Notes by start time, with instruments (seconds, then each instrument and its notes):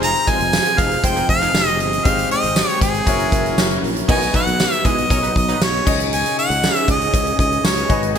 Already playing: fretless electric bass F1, distorted electric guitar F2 C3 F3, analog synth pad F3 C4 D#4 G#4, grand piano C4 D#4 F4 G#4 C5
0.02 analog polysynth F3 D#4 G#4, harmonica A#5, closed hi-hat
0.15 closed hi-hat
0.27 analog polysynth G#3 F4 C5, harmonica G#5, kick, closed hi-hat
0.40 fretless electric bass F1, closed hi-hat
0.53 snare, tambourine
0.66 closed hi-hat
0.78 fretless electric bass F1, distorted electric guitar C3 F3, analog polysynth F3 D#4 G#4, harmonica F5, kick, closed hi-hat
0.91 closed hi-hat
1.03 fretless electric bass F1, distorted electric guitar F2 C3 F3, analog polysynth G#3 F4 C5, harmonica G5, kick, closed hi-hat
1.16 analog polysynth F3 D#4 G#4, closed hi-hat
1.29 fretless electric bass F1, harmonica F5, kick, closed hi-hat
1.42 analog polysynth F3 D#4 G#4, closed hi-hat
1.54 fretless electric bass F1, distorted electric guitar F2 C3 F3, snare, tambourine
1.68 harmonica D#5, closed hi-hat
1.80 fretless electric bass G1, harmonica D#5, closed hi-hat
1.93 closed hi-hat
2.04 fretless electric bass G#1, distorted electric guitar G#2 D#3 G#3, analog synth pad G#3 G5, grand piano C4 D#4 G4 G#4 C5, harmonica F5, kick, closed hi-hat
2.19 closed hi-hat
2.31 harmonica D#5, closed hi-hat
2.43 fretless electric bass G#1, closed hi-hat
2.56 snare, tambourine
2.69 closed hi-hat
2.80 fretless electric bass G#1, distorted electric guitar D#3 G#3, harmonica G#4, kick, closed hi-hat
2.94 closed hi-hat
3.06 fretless electric bass F#1, distorted electric guitar F#2 C#3 F#3, analog synth pad F#3 C#4 E4 A#4, grand piano C#4 E4 F#4 A#4 C#5, kick, closed hi-hat
3.20 closed hi-hat
3.32 fretless electric bass F#1, kick, closed hi-hat
3.46 closed hi-hat
3.57 fretless electric bass F#1, distorted electric guitar F#2 C#3 F#3, snare, tambourine
3.71 closed hi-hat
3.83 fretless electric bass A#1, open hi-hat
3.96 closed hi-hat
4.08 fretless electric bass B1, analog polysynth D#3 B3 F#4, analog synth pad F#3 B3 D#4, grand piano B3 D#4 F#4 B4 D#5, harmonica G#5, kick, crash
4.22 closed hi-hat
4.34 analog polysynth F#3 D#4 B4, harmonica F#5, kick, closed hi-hat
4.47 fretless electric bass B1, closed hi-hat
4.60 snare, tambourine
4.73 harmonica E5, closed hi-hat
4.85 fretless electric bass B1, analog polysynth G#3 E4 G#4, harmonica D#5, kick, closed hi-hat
4.98 closed hi-hat
5.10 fretless electric bass B1, analog polysynth C#4 A#4 C#5, kick, closed hi-hat
5.23 analog polysynth F#3 D#4 B4, closed hi-hat
5.36 fretless electric bass B1, harmonica D#5, kick, closed hi-hat
5.48 analog polysynth F#3 D#4 B4, closed hi-hat
5.61 fretless electric bass B1, harmonica C#5, snare, tambourine
5.75 closed hi-hat
5.85 fretless electric bass C#2, analog synth pad C#3 C#4 G#4, grand piano C#4 D#4 G#4 C#5 D#5, kick, crash
6.00 closed hi-hat
6.13 harmonica G#5, closed hi-hat
6.26 closed hi-hat
6.39 harmonica F#5, closed hi-hat
6.50 fretless electric bass C#2, closed hi-hat
6.63 snare, tambourine
6.76 closed hi-hat
6.88 fretless electric bass C#2, harmonica D#5, kick, closed hi-hat
7.01 closed hi-hat
7.14 fretless electric bass C#2, kick, closed hi-hat
7.27 closed hi-hat
7.39 fretless electric bass C#2, harmonica D#5, kick, closed hi-hat
7.53 closed hi-hat
7.65 fretless electric bass C#2, harmonica C#5, snare, tambourine
7.78 closed hi-hat
7.89 fretless electric bass G#1, analog synth pad G#3 F#4 B4, grand piano D#4 F#4 G#4 B4 D#5, kick, closed hi-hat
8.03 closed hi-hat
8.15 analog polysynth D#3 G#4, closed hi-hat